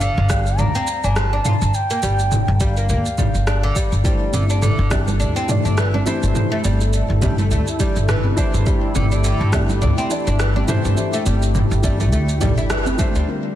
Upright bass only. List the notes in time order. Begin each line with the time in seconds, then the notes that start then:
0.17 G1
0.59 D2
1.04 G1
1.62 G1
2.03 G1
2.48 G1
2.89 D2
3.35 G1
3.92 G1
4.33 G1
4.79 G1
5.20 D2
5.65 G1
6.23 G1
6.64 G1
7.10 G1
7.51 D2
7.96 G1
8.54 G1
8.95 G1
9.41 G1
9.82 D2
10.27 G1
10.85 G1
11.26 G1
11.71 G1
12.13 D2
12.58 G1
13.15 D2